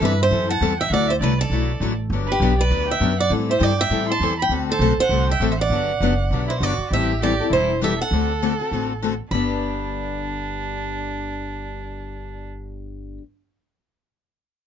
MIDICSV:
0, 0, Header, 1, 6, 480
1, 0, Start_track
1, 0, Key_signature, 1, "major"
1, 0, Tempo, 300150
1, 1457, Time_signature, 4, 2, 24, 8
1, 23452, End_track
2, 0, Start_track
2, 0, Title_t, "Erhu"
2, 0, Program_c, 0, 110
2, 41, Note_on_c, 0, 76, 70
2, 297, Note_off_c, 0, 76, 0
2, 336, Note_on_c, 0, 76, 63
2, 768, Note_off_c, 0, 76, 0
2, 778, Note_on_c, 0, 81, 85
2, 1228, Note_off_c, 0, 81, 0
2, 1270, Note_on_c, 0, 79, 72
2, 1439, Note_off_c, 0, 79, 0
2, 1449, Note_on_c, 0, 78, 84
2, 1715, Note_off_c, 0, 78, 0
2, 1725, Note_on_c, 0, 76, 76
2, 1816, Note_off_c, 0, 76, 0
2, 1916, Note_on_c, 0, 74, 68
2, 2193, Note_off_c, 0, 74, 0
2, 2205, Note_on_c, 0, 74, 60
2, 3111, Note_off_c, 0, 74, 0
2, 3627, Note_on_c, 0, 71, 72
2, 4091, Note_off_c, 0, 71, 0
2, 4126, Note_on_c, 0, 74, 66
2, 4581, Note_off_c, 0, 74, 0
2, 4602, Note_on_c, 0, 79, 72
2, 5059, Note_off_c, 0, 79, 0
2, 5102, Note_on_c, 0, 78, 65
2, 5282, Note_off_c, 0, 78, 0
2, 5589, Note_on_c, 0, 76, 77
2, 5768, Note_on_c, 0, 79, 79
2, 5792, Note_off_c, 0, 76, 0
2, 6044, Note_off_c, 0, 79, 0
2, 6054, Note_on_c, 0, 79, 84
2, 6504, Note_off_c, 0, 79, 0
2, 6536, Note_on_c, 0, 84, 93
2, 6985, Note_off_c, 0, 84, 0
2, 7026, Note_on_c, 0, 83, 71
2, 7203, Note_off_c, 0, 83, 0
2, 7508, Note_on_c, 0, 72, 71
2, 7951, Note_off_c, 0, 72, 0
2, 8001, Note_on_c, 0, 78, 80
2, 8438, Note_off_c, 0, 78, 0
2, 8463, Note_on_c, 0, 79, 85
2, 8784, Note_off_c, 0, 79, 0
2, 8815, Note_on_c, 0, 76, 48
2, 8936, Note_off_c, 0, 76, 0
2, 8949, Note_on_c, 0, 78, 71
2, 10320, Note_off_c, 0, 78, 0
2, 10359, Note_on_c, 0, 64, 57
2, 10558, Note_on_c, 0, 66, 66
2, 10582, Note_off_c, 0, 64, 0
2, 11037, Note_off_c, 0, 66, 0
2, 11046, Note_on_c, 0, 67, 71
2, 11495, Note_off_c, 0, 67, 0
2, 11530, Note_on_c, 0, 67, 77
2, 11977, Note_off_c, 0, 67, 0
2, 12016, Note_on_c, 0, 64, 70
2, 12460, Note_off_c, 0, 64, 0
2, 12513, Note_on_c, 0, 67, 68
2, 12770, Note_off_c, 0, 67, 0
2, 12779, Note_on_c, 0, 69, 81
2, 14635, Note_off_c, 0, 69, 0
2, 14890, Note_on_c, 0, 62, 65
2, 19947, Note_off_c, 0, 62, 0
2, 23452, End_track
3, 0, Start_track
3, 0, Title_t, "Steel-string acoustic guitar"
3, 0, Program_c, 1, 25
3, 80, Note_on_c, 1, 71, 78
3, 344, Note_off_c, 1, 71, 0
3, 364, Note_on_c, 1, 72, 89
3, 801, Note_off_c, 1, 72, 0
3, 807, Note_on_c, 1, 78, 84
3, 1243, Note_off_c, 1, 78, 0
3, 1291, Note_on_c, 1, 76, 91
3, 1458, Note_off_c, 1, 76, 0
3, 1496, Note_on_c, 1, 74, 83
3, 1763, Note_on_c, 1, 72, 73
3, 1772, Note_off_c, 1, 74, 0
3, 1843, Note_off_c, 1, 72, 0
3, 1975, Note_on_c, 1, 71, 78
3, 2246, Note_off_c, 1, 71, 0
3, 2252, Note_on_c, 1, 69, 76
3, 3135, Note_off_c, 1, 69, 0
3, 3705, Note_on_c, 1, 67, 71
3, 4168, Note_on_c, 1, 71, 91
3, 4179, Note_off_c, 1, 67, 0
3, 4603, Note_off_c, 1, 71, 0
3, 4659, Note_on_c, 1, 76, 78
3, 5089, Note_off_c, 1, 76, 0
3, 5124, Note_on_c, 1, 74, 81
3, 5294, Note_off_c, 1, 74, 0
3, 5610, Note_on_c, 1, 72, 72
3, 5805, Note_off_c, 1, 72, 0
3, 5805, Note_on_c, 1, 74, 90
3, 6086, Note_off_c, 1, 74, 0
3, 6089, Note_on_c, 1, 76, 100
3, 6570, Note_off_c, 1, 76, 0
3, 6581, Note_on_c, 1, 81, 95
3, 7010, Note_off_c, 1, 81, 0
3, 7071, Note_on_c, 1, 79, 92
3, 7228, Note_off_c, 1, 79, 0
3, 7541, Note_on_c, 1, 69, 86
3, 8000, Note_on_c, 1, 72, 94
3, 8015, Note_off_c, 1, 69, 0
3, 8438, Note_off_c, 1, 72, 0
3, 8498, Note_on_c, 1, 76, 72
3, 8823, Note_on_c, 1, 72, 50
3, 8835, Note_off_c, 1, 76, 0
3, 8949, Note_off_c, 1, 72, 0
3, 8976, Note_on_c, 1, 74, 82
3, 10394, Note_on_c, 1, 72, 68
3, 10526, Note_off_c, 1, 74, 0
3, 10605, Note_off_c, 1, 72, 0
3, 10605, Note_on_c, 1, 74, 81
3, 11068, Note_off_c, 1, 74, 0
3, 11089, Note_on_c, 1, 76, 81
3, 11518, Note_off_c, 1, 76, 0
3, 11567, Note_on_c, 1, 74, 84
3, 11997, Note_off_c, 1, 74, 0
3, 12039, Note_on_c, 1, 72, 75
3, 12473, Note_off_c, 1, 72, 0
3, 12538, Note_on_c, 1, 76, 86
3, 12810, Note_off_c, 1, 76, 0
3, 12818, Note_on_c, 1, 78, 90
3, 14654, Note_off_c, 1, 78, 0
3, 14892, Note_on_c, 1, 83, 63
3, 21068, Note_off_c, 1, 83, 0
3, 23452, End_track
4, 0, Start_track
4, 0, Title_t, "Steel-string acoustic guitar"
4, 0, Program_c, 2, 25
4, 28, Note_on_c, 2, 52, 77
4, 30, Note_on_c, 2, 55, 81
4, 40, Note_on_c, 2, 64, 89
4, 42, Note_on_c, 2, 60, 77
4, 42, Note_on_c, 2, 69, 80
4, 195, Note_off_c, 2, 52, 0
4, 196, Note_off_c, 2, 55, 0
4, 201, Note_off_c, 2, 64, 0
4, 202, Note_off_c, 2, 60, 0
4, 202, Note_off_c, 2, 69, 0
4, 492, Note_on_c, 2, 52, 65
4, 500, Note_on_c, 2, 60, 62
4, 502, Note_on_c, 2, 55, 67
4, 515, Note_on_c, 2, 64, 66
4, 515, Note_on_c, 2, 69, 69
4, 808, Note_off_c, 2, 52, 0
4, 812, Note_off_c, 2, 60, 0
4, 813, Note_off_c, 2, 55, 0
4, 819, Note_off_c, 2, 64, 0
4, 820, Note_off_c, 2, 69, 0
4, 985, Note_on_c, 2, 52, 78
4, 994, Note_on_c, 2, 55, 90
4, 998, Note_on_c, 2, 60, 86
4, 998, Note_on_c, 2, 69, 91
4, 1000, Note_on_c, 2, 64, 87
4, 1154, Note_off_c, 2, 52, 0
4, 1158, Note_off_c, 2, 55, 0
4, 1160, Note_off_c, 2, 60, 0
4, 1160, Note_off_c, 2, 69, 0
4, 1161, Note_off_c, 2, 64, 0
4, 1469, Note_on_c, 2, 50, 59
4, 1480, Note_on_c, 2, 57, 68
4, 1484, Note_on_c, 2, 54, 66
4, 1494, Note_on_c, 2, 64, 66
4, 1495, Note_on_c, 2, 66, 70
4, 1776, Note_off_c, 2, 50, 0
4, 1782, Note_off_c, 2, 57, 0
4, 1784, Note_off_c, 2, 54, 0
4, 1789, Note_off_c, 2, 64, 0
4, 1790, Note_off_c, 2, 66, 0
4, 1950, Note_on_c, 2, 50, 89
4, 1950, Note_on_c, 2, 54, 85
4, 1959, Note_on_c, 2, 57, 87
4, 1964, Note_on_c, 2, 66, 92
4, 1969, Note_on_c, 2, 64, 84
4, 2116, Note_off_c, 2, 50, 0
4, 2116, Note_off_c, 2, 54, 0
4, 2121, Note_off_c, 2, 57, 0
4, 2123, Note_off_c, 2, 66, 0
4, 2126, Note_off_c, 2, 64, 0
4, 2423, Note_on_c, 2, 50, 69
4, 2430, Note_on_c, 2, 54, 66
4, 2445, Note_on_c, 2, 64, 72
4, 2449, Note_on_c, 2, 66, 66
4, 2451, Note_on_c, 2, 57, 64
4, 2734, Note_off_c, 2, 50, 0
4, 2737, Note_off_c, 2, 54, 0
4, 2744, Note_off_c, 2, 64, 0
4, 2746, Note_off_c, 2, 66, 0
4, 2748, Note_off_c, 2, 57, 0
4, 2900, Note_on_c, 2, 50, 86
4, 2904, Note_on_c, 2, 54, 90
4, 2915, Note_on_c, 2, 57, 83
4, 2920, Note_on_c, 2, 66, 91
4, 2921, Note_on_c, 2, 64, 80
4, 3071, Note_off_c, 2, 50, 0
4, 3073, Note_off_c, 2, 54, 0
4, 3079, Note_off_c, 2, 57, 0
4, 3081, Note_off_c, 2, 66, 0
4, 3082, Note_off_c, 2, 64, 0
4, 3396, Note_on_c, 2, 50, 56
4, 3406, Note_on_c, 2, 54, 66
4, 3406, Note_on_c, 2, 59, 60
4, 3417, Note_on_c, 2, 62, 59
4, 3420, Note_on_c, 2, 67, 63
4, 3700, Note_off_c, 2, 50, 0
4, 3705, Note_off_c, 2, 54, 0
4, 3705, Note_off_c, 2, 59, 0
4, 3710, Note_off_c, 2, 62, 0
4, 3712, Note_off_c, 2, 67, 0
4, 3868, Note_on_c, 2, 50, 85
4, 3868, Note_on_c, 2, 54, 85
4, 3877, Note_on_c, 2, 62, 91
4, 3883, Note_on_c, 2, 59, 86
4, 3886, Note_on_c, 2, 67, 86
4, 4035, Note_off_c, 2, 50, 0
4, 4035, Note_off_c, 2, 54, 0
4, 4039, Note_off_c, 2, 62, 0
4, 4042, Note_off_c, 2, 59, 0
4, 4044, Note_off_c, 2, 67, 0
4, 4321, Note_on_c, 2, 50, 62
4, 4328, Note_on_c, 2, 54, 66
4, 4335, Note_on_c, 2, 59, 71
4, 4345, Note_on_c, 2, 67, 78
4, 4354, Note_on_c, 2, 62, 68
4, 4642, Note_off_c, 2, 50, 0
4, 4646, Note_off_c, 2, 54, 0
4, 4649, Note_off_c, 2, 59, 0
4, 4654, Note_off_c, 2, 67, 0
4, 4659, Note_off_c, 2, 62, 0
4, 4813, Note_on_c, 2, 50, 72
4, 4819, Note_on_c, 2, 54, 89
4, 4828, Note_on_c, 2, 59, 81
4, 4842, Note_on_c, 2, 62, 83
4, 4844, Note_on_c, 2, 67, 89
4, 4987, Note_off_c, 2, 50, 0
4, 4990, Note_off_c, 2, 54, 0
4, 4995, Note_off_c, 2, 59, 0
4, 5002, Note_off_c, 2, 62, 0
4, 5003, Note_off_c, 2, 67, 0
4, 5289, Note_on_c, 2, 52, 66
4, 5296, Note_on_c, 2, 55, 61
4, 5301, Note_on_c, 2, 60, 74
4, 5303, Note_on_c, 2, 64, 67
4, 5307, Note_on_c, 2, 69, 72
4, 5606, Note_off_c, 2, 52, 0
4, 5609, Note_off_c, 2, 55, 0
4, 5612, Note_off_c, 2, 60, 0
4, 5613, Note_off_c, 2, 64, 0
4, 5615, Note_off_c, 2, 69, 0
4, 5750, Note_on_c, 2, 52, 80
4, 5758, Note_on_c, 2, 60, 86
4, 5761, Note_on_c, 2, 55, 85
4, 5773, Note_on_c, 2, 69, 83
4, 5777, Note_on_c, 2, 64, 87
4, 5935, Note_off_c, 2, 52, 0
4, 5940, Note_off_c, 2, 60, 0
4, 5941, Note_off_c, 2, 55, 0
4, 5947, Note_off_c, 2, 69, 0
4, 5949, Note_off_c, 2, 64, 0
4, 6239, Note_on_c, 2, 52, 64
4, 6254, Note_on_c, 2, 60, 67
4, 6258, Note_on_c, 2, 55, 70
4, 6260, Note_on_c, 2, 64, 75
4, 6269, Note_on_c, 2, 69, 69
4, 6560, Note_off_c, 2, 52, 0
4, 6568, Note_off_c, 2, 60, 0
4, 6570, Note_off_c, 2, 55, 0
4, 6571, Note_off_c, 2, 64, 0
4, 6575, Note_off_c, 2, 69, 0
4, 6748, Note_on_c, 2, 55, 80
4, 6749, Note_on_c, 2, 52, 84
4, 6763, Note_on_c, 2, 60, 89
4, 6765, Note_on_c, 2, 64, 94
4, 6771, Note_on_c, 2, 69, 95
4, 6914, Note_off_c, 2, 52, 0
4, 6914, Note_off_c, 2, 55, 0
4, 6921, Note_off_c, 2, 60, 0
4, 6922, Note_off_c, 2, 64, 0
4, 6926, Note_off_c, 2, 69, 0
4, 7205, Note_on_c, 2, 50, 65
4, 7219, Note_on_c, 2, 57, 65
4, 7219, Note_on_c, 2, 60, 67
4, 7225, Note_on_c, 2, 69, 79
4, 7226, Note_on_c, 2, 66, 75
4, 7523, Note_off_c, 2, 50, 0
4, 7530, Note_off_c, 2, 57, 0
4, 7530, Note_off_c, 2, 60, 0
4, 7533, Note_off_c, 2, 69, 0
4, 7534, Note_off_c, 2, 66, 0
4, 7692, Note_on_c, 2, 50, 83
4, 7701, Note_on_c, 2, 60, 90
4, 7703, Note_on_c, 2, 57, 85
4, 7706, Note_on_c, 2, 66, 86
4, 7713, Note_on_c, 2, 69, 106
4, 7866, Note_off_c, 2, 50, 0
4, 7870, Note_off_c, 2, 60, 0
4, 7871, Note_off_c, 2, 57, 0
4, 7873, Note_off_c, 2, 66, 0
4, 7876, Note_off_c, 2, 69, 0
4, 8164, Note_on_c, 2, 57, 64
4, 8171, Note_on_c, 2, 50, 74
4, 8174, Note_on_c, 2, 66, 78
4, 8176, Note_on_c, 2, 60, 62
4, 8183, Note_on_c, 2, 69, 66
4, 8482, Note_off_c, 2, 57, 0
4, 8486, Note_off_c, 2, 50, 0
4, 8487, Note_off_c, 2, 66, 0
4, 8488, Note_off_c, 2, 60, 0
4, 8492, Note_off_c, 2, 69, 0
4, 8648, Note_on_c, 2, 50, 82
4, 8662, Note_on_c, 2, 57, 90
4, 8665, Note_on_c, 2, 60, 96
4, 8669, Note_on_c, 2, 66, 86
4, 8673, Note_on_c, 2, 69, 92
4, 8823, Note_off_c, 2, 50, 0
4, 8830, Note_off_c, 2, 57, 0
4, 8832, Note_off_c, 2, 60, 0
4, 8834, Note_off_c, 2, 66, 0
4, 8836, Note_off_c, 2, 69, 0
4, 9143, Note_on_c, 2, 50, 61
4, 9147, Note_on_c, 2, 59, 67
4, 9153, Note_on_c, 2, 54, 69
4, 9156, Note_on_c, 2, 62, 71
4, 9172, Note_on_c, 2, 67, 73
4, 9451, Note_off_c, 2, 50, 0
4, 9453, Note_off_c, 2, 59, 0
4, 9456, Note_off_c, 2, 54, 0
4, 9458, Note_off_c, 2, 62, 0
4, 9466, Note_off_c, 2, 67, 0
4, 9623, Note_on_c, 2, 50, 78
4, 9632, Note_on_c, 2, 54, 84
4, 9639, Note_on_c, 2, 59, 102
4, 9641, Note_on_c, 2, 62, 90
4, 9653, Note_on_c, 2, 67, 90
4, 9790, Note_off_c, 2, 50, 0
4, 9795, Note_off_c, 2, 54, 0
4, 9798, Note_off_c, 2, 59, 0
4, 9799, Note_off_c, 2, 62, 0
4, 9805, Note_off_c, 2, 67, 0
4, 10109, Note_on_c, 2, 50, 62
4, 10117, Note_on_c, 2, 59, 70
4, 10118, Note_on_c, 2, 54, 64
4, 10126, Note_on_c, 2, 62, 68
4, 10135, Note_on_c, 2, 67, 63
4, 10414, Note_off_c, 2, 50, 0
4, 10418, Note_off_c, 2, 54, 0
4, 10418, Note_off_c, 2, 59, 0
4, 10422, Note_off_c, 2, 62, 0
4, 10427, Note_off_c, 2, 67, 0
4, 10576, Note_on_c, 2, 50, 77
4, 10593, Note_on_c, 2, 54, 77
4, 10598, Note_on_c, 2, 62, 96
4, 10602, Note_on_c, 2, 67, 94
4, 10606, Note_on_c, 2, 59, 85
4, 10747, Note_off_c, 2, 50, 0
4, 10755, Note_off_c, 2, 54, 0
4, 10758, Note_off_c, 2, 62, 0
4, 10759, Note_off_c, 2, 67, 0
4, 10762, Note_off_c, 2, 59, 0
4, 11074, Note_on_c, 2, 52, 56
4, 11085, Note_on_c, 2, 55, 57
4, 11091, Note_on_c, 2, 60, 68
4, 11091, Note_on_c, 2, 64, 64
4, 11102, Note_on_c, 2, 69, 70
4, 11376, Note_off_c, 2, 52, 0
4, 11382, Note_off_c, 2, 55, 0
4, 11384, Note_off_c, 2, 60, 0
4, 11384, Note_off_c, 2, 64, 0
4, 11390, Note_off_c, 2, 69, 0
4, 11549, Note_on_c, 2, 52, 81
4, 11556, Note_on_c, 2, 55, 78
4, 11567, Note_on_c, 2, 60, 74
4, 11570, Note_on_c, 2, 69, 82
4, 11574, Note_on_c, 2, 64, 83
4, 11713, Note_off_c, 2, 52, 0
4, 11717, Note_off_c, 2, 55, 0
4, 11722, Note_off_c, 2, 60, 0
4, 11723, Note_off_c, 2, 69, 0
4, 11725, Note_off_c, 2, 64, 0
4, 11836, Note_on_c, 2, 69, 52
4, 11857, Note_on_c, 2, 64, 51
4, 11877, Note_on_c, 2, 60, 50
4, 12013, Note_off_c, 2, 69, 0
4, 12023, Note_off_c, 2, 64, 0
4, 12033, Note_off_c, 2, 60, 0
4, 12044, Note_on_c, 2, 52, 58
4, 12050, Note_on_c, 2, 55, 65
4, 12059, Note_on_c, 2, 69, 57
4, 12061, Note_on_c, 2, 60, 58
4, 12062, Note_on_c, 2, 64, 69
4, 12341, Note_off_c, 2, 52, 0
4, 12344, Note_off_c, 2, 55, 0
4, 12349, Note_off_c, 2, 69, 0
4, 12350, Note_off_c, 2, 60, 0
4, 12350, Note_off_c, 2, 64, 0
4, 12496, Note_on_c, 2, 52, 85
4, 12505, Note_on_c, 2, 60, 77
4, 12506, Note_on_c, 2, 55, 82
4, 12508, Note_on_c, 2, 64, 86
4, 12524, Note_on_c, 2, 69, 94
4, 12666, Note_off_c, 2, 52, 0
4, 12670, Note_off_c, 2, 60, 0
4, 12671, Note_off_c, 2, 55, 0
4, 12672, Note_off_c, 2, 64, 0
4, 12680, Note_off_c, 2, 69, 0
4, 12994, Note_on_c, 2, 50, 67
4, 13008, Note_on_c, 2, 57, 56
4, 13008, Note_on_c, 2, 60, 66
4, 13017, Note_on_c, 2, 66, 64
4, 13020, Note_on_c, 2, 69, 72
4, 13296, Note_off_c, 2, 50, 0
4, 13303, Note_off_c, 2, 57, 0
4, 13303, Note_off_c, 2, 60, 0
4, 13307, Note_off_c, 2, 66, 0
4, 13309, Note_off_c, 2, 69, 0
4, 13471, Note_on_c, 2, 50, 77
4, 13475, Note_on_c, 2, 57, 84
4, 13478, Note_on_c, 2, 60, 77
4, 13484, Note_on_c, 2, 66, 86
4, 13485, Note_on_c, 2, 69, 87
4, 13634, Note_off_c, 2, 50, 0
4, 13635, Note_off_c, 2, 57, 0
4, 13637, Note_off_c, 2, 60, 0
4, 13640, Note_off_c, 2, 66, 0
4, 13641, Note_off_c, 2, 69, 0
4, 13744, Note_on_c, 2, 69, 46
4, 13769, Note_on_c, 2, 66, 45
4, 13774, Note_on_c, 2, 60, 40
4, 13926, Note_off_c, 2, 69, 0
4, 13939, Note_off_c, 2, 66, 0
4, 13941, Note_off_c, 2, 60, 0
4, 13953, Note_on_c, 2, 50, 58
4, 13963, Note_on_c, 2, 57, 59
4, 13966, Note_on_c, 2, 60, 64
4, 13971, Note_on_c, 2, 66, 61
4, 13977, Note_on_c, 2, 69, 71
4, 14255, Note_off_c, 2, 50, 0
4, 14260, Note_off_c, 2, 57, 0
4, 14262, Note_off_c, 2, 60, 0
4, 14264, Note_off_c, 2, 66, 0
4, 14267, Note_off_c, 2, 69, 0
4, 14432, Note_on_c, 2, 50, 83
4, 14441, Note_on_c, 2, 57, 81
4, 14451, Note_on_c, 2, 60, 78
4, 14456, Note_on_c, 2, 66, 85
4, 14459, Note_on_c, 2, 69, 80
4, 14594, Note_off_c, 2, 50, 0
4, 14598, Note_off_c, 2, 57, 0
4, 14604, Note_off_c, 2, 60, 0
4, 14606, Note_off_c, 2, 66, 0
4, 14608, Note_off_c, 2, 69, 0
4, 14897, Note_on_c, 2, 43, 77
4, 14914, Note_on_c, 2, 50, 69
4, 14941, Note_on_c, 2, 59, 70
4, 14949, Note_on_c, 2, 62, 74
4, 14951, Note_on_c, 2, 67, 82
4, 21134, Note_off_c, 2, 43, 0
4, 21143, Note_off_c, 2, 50, 0
4, 21156, Note_off_c, 2, 59, 0
4, 21161, Note_off_c, 2, 62, 0
4, 21161, Note_off_c, 2, 67, 0
4, 23452, End_track
5, 0, Start_track
5, 0, Title_t, "Upright bass"
5, 0, Program_c, 3, 32
5, 11, Note_on_c, 3, 43, 91
5, 480, Note_off_c, 3, 43, 0
5, 493, Note_on_c, 3, 42, 74
5, 961, Note_off_c, 3, 42, 0
5, 972, Note_on_c, 3, 40, 92
5, 1430, Note_off_c, 3, 40, 0
5, 1440, Note_on_c, 3, 38, 83
5, 1914, Note_off_c, 3, 38, 0
5, 1929, Note_on_c, 3, 36, 84
5, 2384, Note_off_c, 3, 36, 0
5, 2394, Note_on_c, 3, 35, 71
5, 2871, Note_off_c, 3, 35, 0
5, 2880, Note_on_c, 3, 33, 82
5, 3345, Note_off_c, 3, 33, 0
5, 3354, Note_on_c, 3, 31, 85
5, 3825, Note_off_c, 3, 31, 0
5, 3835, Note_on_c, 3, 35, 87
5, 4311, Note_off_c, 3, 35, 0
5, 4318, Note_on_c, 3, 38, 73
5, 4793, Note_off_c, 3, 38, 0
5, 4802, Note_on_c, 3, 42, 95
5, 5270, Note_off_c, 3, 42, 0
5, 5280, Note_on_c, 3, 45, 84
5, 5753, Note_off_c, 3, 45, 0
5, 5768, Note_on_c, 3, 43, 96
5, 6237, Note_off_c, 3, 43, 0
5, 6244, Note_on_c, 3, 45, 71
5, 6704, Note_off_c, 3, 45, 0
5, 6714, Note_on_c, 3, 40, 94
5, 7174, Note_off_c, 3, 40, 0
5, 7183, Note_on_c, 3, 38, 78
5, 7654, Note_off_c, 3, 38, 0
5, 7664, Note_on_c, 3, 35, 95
5, 7945, Note_off_c, 3, 35, 0
5, 8144, Note_on_c, 3, 36, 84
5, 8624, Note_off_c, 3, 36, 0
5, 8636, Note_on_c, 3, 33, 94
5, 9105, Note_off_c, 3, 33, 0
5, 9114, Note_on_c, 3, 31, 86
5, 9589, Note_off_c, 3, 31, 0
5, 9603, Note_on_c, 3, 30, 82
5, 10073, Note_off_c, 3, 30, 0
5, 10085, Note_on_c, 3, 35, 72
5, 10551, Note_off_c, 3, 35, 0
5, 10560, Note_on_c, 3, 31, 82
5, 10833, Note_off_c, 3, 31, 0
5, 11044, Note_on_c, 3, 33, 82
5, 11815, Note_off_c, 3, 33, 0
5, 11999, Note_on_c, 3, 28, 68
5, 12772, Note_off_c, 3, 28, 0
5, 12969, Note_on_c, 3, 38, 80
5, 13738, Note_off_c, 3, 38, 0
5, 13937, Note_on_c, 3, 33, 66
5, 14703, Note_off_c, 3, 33, 0
5, 14888, Note_on_c, 3, 31, 74
5, 21066, Note_off_c, 3, 31, 0
5, 23452, End_track
6, 0, Start_track
6, 0, Title_t, "Muted upright bass strokes"
6, 7958, Note_on_c, 9, 29, 42
6, 8118, Note_off_c, 9, 29, 0
6, 10851, Note_on_c, 9, 29, 41
6, 11011, Note_off_c, 9, 29, 0
6, 23452, End_track
0, 0, End_of_file